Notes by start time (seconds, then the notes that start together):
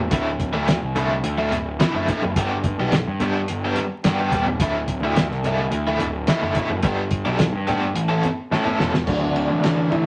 0.11 D1 A2 D3 A3 E4, kick, closed hi-hat
0.40 kick, closed hi-hat, low conga
0.53 D2 A2 D3 A3 E4
0.68 muted overdriven electric guitar stroke, snare, closed hi-hat, high conga
0.82 C2
0.96 A2 D3 A3 E4, closed hi-hat, low conga
1.24 D2, closed hi-hat
1.38 A2 D3 A3 E4
1.52 D1, closed hi-hat, high conga
1.80 A2 D3 A3 E4, snare, closed hi-hat
1.94 F#1 A2 D3 A3 E4
2.08 A2 D3 A3 E4, kick, closed hi-hat, low conga
2.22 F#1, muted overdriven electric guitar stroke, high conga
2.36 G1 G3 B3 D4 G4, kick, closed hi-hat
2.64 kick, closed hi-hat, low conga
2.79 B1 G3 B3 D4 G4
2.92 muted overdriven electric guitar stroke, snare, closed hi-hat, high conga
3.08 G2
3.20 G3 B3 D4 G4, closed hi-hat, high conga, low conga
3.48 G1, closed hi-hat
3.65 G3 B3 D4 G4
3.76 closed hi-hat, high conga
4.04 G2 G3 B3 D4 G4, snare, closed hi-hat
4.19 G3 B3 D4 G4
4.32 D#1 G3 B3 D4 G4, kick, closed hi-hat, low conga
4.46 muted overdriven electric guitar stroke, high conga
4.60 D1 A2 D3 A3 E4, kick, closed hi-hat
4.88 kick, closed hi-hat, low conga
5.01 D2 A2 D3 A3 E4
5.16 muted overdriven electric guitar stroke, snare, closed hi-hat, high conga
5.29 C2, snare
5.43 A2 D3 A3 E4, closed hi-hat, high conga
5.71 D2, closed hi-hat
5.87 A2 D3 A3 E4
6.00 D1, closed hi-hat, high conga
6.27 A2 D3 A3 E4, snare, closed hi-hat
6.42 F#1 A2 D3 A3 E4
6.55 A2 D3 A3 E4, kick, closed hi-hat, low conga
6.70 F#1, muted overdriven electric guitar stroke
6.82 G1 G3 B3 D4 G4, kick, closed hi-hat, low conga
7.11 kick, closed hi-hat
7.25 B1 G3 B3 D4 G4
7.39 muted overdriven electric guitar stroke, snare, closed hi-hat, high conga
7.53 G2
7.67 G3 B3 D4 G4, closed hi-hat, high conga, low conga
7.95 A1, closed hi-hat
8.09 A3 C#4 E4 A4
8.23 closed hi-hat, high conga
8.51 A2 A3 C#4 E4 A4, snare
8.65 A3 C#4 E4 A4, high conga
8.79 E1 A3 C#4 E4 A4, snare, low conga
8.94 muted overdriven electric guitar stroke, snare, high conga
9.06 D1 D2 D4, kick, crash
9.23 high conga
9.36 A2, ride
9.50 A1
9.64 D3, snare, ride
9.90 A1 A2 E4, ride, low conga